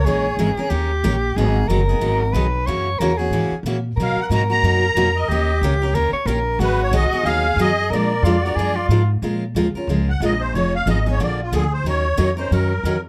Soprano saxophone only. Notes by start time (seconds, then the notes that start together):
0.05 G#4
0.70 G4
1.36 G#4
1.68 A#4
2.33 B4
2.66 C#5
2.99 A#4
3.18 G#4
3.96 A#4
5.29 G4
5.95 A#4
6.13 C#5
6.27 A#4
6.60 F#4
7.25 G#4
7.91 A#4
8.24 F4
8.43 F#4
8.56 G#4
8.76 F4